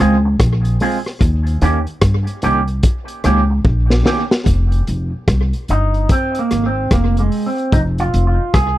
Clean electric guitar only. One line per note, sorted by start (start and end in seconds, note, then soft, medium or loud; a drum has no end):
0.00 0.15 G#3 medium
0.00 0.16 C4 medium
0.00 0.16 F4 medium
0.00 0.16 G#4 medium
0.25 muted clean electric guitar stroke medium
0.81 0.97 G#3 medium
0.81 0.97 C4 medium
0.81 0.97 F4 medium
0.81 0.98 G#4 medium
1.62 1.78 D#3 medium
1.62 1.78 A#3 medium
1.62 1.79 C#4 loud
1.62 1.79 G4 medium
2.43 2.59 D#3 medium
2.43 2.60 A#3 medium
2.43 2.60 C#4 medium
2.43 2.60 G4 loud
3.24 3.40 D#3 medium
3.24 3.41 A#3 medium
3.24 3.41 C#4 medium
3.24 3.41 G4 medium
3.50 muted clean electric guitar stroke soft
4.05 4.22 D#3 medium
4.05 4.22 A#3 medium
4.05 4.22 C#4 medium
4.05 4.22 G4 medium
5.70 6.11 D#4 medium
6.12 6.39 C4 medium
6.39 6.66 A#3 medium
6.66 6.93 C4 medium
6.93 7.18 A#3 medium
7.19 7.47 G#3 medium
7.19 7.21 A#3 medium
7.46 7.74 C4 medium
7.73 7.80 D#4 loud
8.00 8.26 F4 medium
8.27 8.55 F4 medium
8.54 8.78 G#4 loud